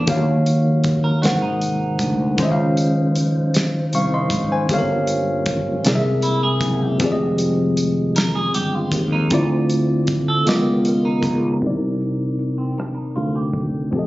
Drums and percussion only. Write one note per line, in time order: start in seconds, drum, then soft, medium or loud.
0.07 kick loud
0.07 closed hi-hat medium
0.46 closed hi-hat medium
0.84 kick loud
0.84 closed hi-hat medium
1.23 snare loud
1.23 closed hi-hat medium
1.61 closed hi-hat medium
1.99 kick loud
1.99 closed hi-hat medium
2.38 kick loud
2.38 closed hi-hat medium
2.77 closed hi-hat medium
3.16 closed hi-hat medium
3.54 snare loud
3.54 closed hi-hat medium
3.93 closed hi-hat medium
4.30 kick loud
4.30 closed hi-hat medium
4.69 kick loud
4.69 closed hi-hat medium
5.07 closed hi-hat soft
5.46 kick loud
5.46 closed hi-hat medium
5.85 snare loud
5.85 closed hi-hat medium
6.22 closed hi-hat medium
6.61 kick medium
6.61 closed hi-hat medium
7.00 kick loud
7.00 closed hi-hat medium
7.38 closed hi-hat medium
7.77 closed hi-hat medium
8.16 snare loud
8.16 closed hi-hat medium
8.54 closed hi-hat medium
8.92 kick medium
8.92 closed hi-hat medium
9.30 kick loud
9.30 closed hi-hat medium
9.70 closed hi-hat soft
10.07 kick loud
10.07 closed hi-hat medium
10.47 snare loud
10.47 closed hi-hat medium
10.85 closed hi-hat medium
11.23 kick loud
11.23 closed hi-hat medium
11.62 kick medium
11.62 closed hi-hat medium
12.01 closed hi-hat soft
12.39 closed hi-hat soft
12.78 cross-stick medium
12.78 closed hi-hat medium
13.16 closed hi-hat medium
13.53 kick medium
13.53 closed hi-hat medium
13.92 kick loud
13.92 closed hi-hat medium